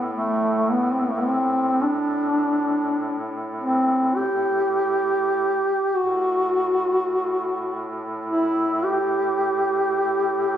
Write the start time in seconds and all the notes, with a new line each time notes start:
Already playing: A2
0.14 A3
0.71 B3
0.92 C4
1.02 B3
1.10 A3
1.19 B3
1.27 C4
1.83 D4
3.59 C4
4.16 G4
5.95 A2 F#4
8.26 E4
8.84 G4